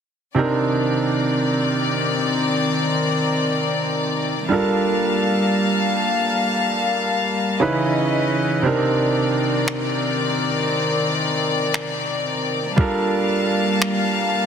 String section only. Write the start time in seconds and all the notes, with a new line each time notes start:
0.36 D#3 C4 A#4 D5
4.50 G3 A#3 F5 A5
7.61 E3 C#4 B4 D#5
8.64 D#3 C4 A#4 D5
12.77 G3 A#3 F5 A5